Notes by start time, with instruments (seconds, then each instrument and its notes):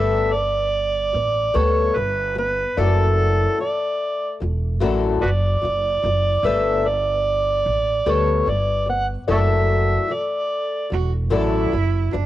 Already playing: upright bass G1, twelve-string acoustic guitar G3 A3 B3 A4 D5, harmonica E5
0.32 twelve-string acoustic guitar G3 B3, harmonica D5
1.13 upright bass A1, twelve-string acoustic guitar G3 B3
1.54 upright bass D2, twelve-string acoustic guitar G3 A3 B3 A4, harmonica C#5
1.95 upright bass G1, twelve-string acoustic guitar G3 B3, harmonica B4
2.35 twelve-string acoustic guitar G3 B3, harmonica B4
2.77 upright bass F#1, twelve-string acoustic guitar F#2 E3 F#3 A3 A4 D5, harmonica A4
3.58 twelve-string acoustic guitar F#2 E3 F#3, harmonica D5
4.40 upright bass E1, twelve-string acoustic guitar F#2 E3 F#3
4.80 upright bass A1, twelve-string acoustic guitar F#2 E3 F#3 A3 A4 D5
5.22 upright bass F#1, twelve-string acoustic guitar F#2 E3 F#3, harmonica F#4 B4 D5
5.62 upright bass F#1, twelve-string acoustic guitar F#2 E3 F#3
6.02 upright bass F#1, twelve-string acoustic guitar F#2 E3 F#3
6.43 upright bass G1, twelve-string acoustic guitar G3 A3 B3 A4 D5, harmonica E5
6.83 twelve-string acoustic guitar G3 B3
6.88 harmonica D5
7.66 upright bass A1
8.06 upright bass D2, twelve-string acoustic guitar G3 A3 B3 A4
8.11 harmonica C#5
8.46 upright bass G1, twelve-string acoustic guitar G3, harmonica D5
8.86 twelve-string acoustic guitar G3 B3, harmonica F#5
9.28 upright bass F#1, twelve-string acoustic guitar F#2 E3 F#3 A3 A4 D5, harmonica A4 C#5 E5
10.08 twelve-string acoustic guitar F#2 E3 F#3
10.13 harmonica D5
10.90 upright bass E1, twelve-string acoustic guitar F#2 E3 F#3, cello F#4
11.30 upright bass A1, twelve-string acoustic guitar F#2 E3 F#3 A3 A4 D5, cello E4
11.72 upright bass F#1, twelve-string acoustic guitar F#2 E3 F#3
12.11 upright bass F#1, twelve-string acoustic guitar F#2 E3 F#3, cello D4